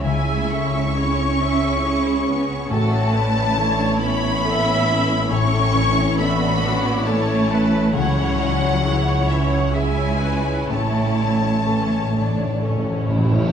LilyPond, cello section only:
\new Staff \with { instrumentName = "Cello section" } { \time 3/4 \key a \major \tempo 4 = 67 gis8 cis'2~ cis'8 | a4. b4. | cis'4 b4 a4 | fis4. e16 fis16 gis4 |
a2~ a8 r8 | }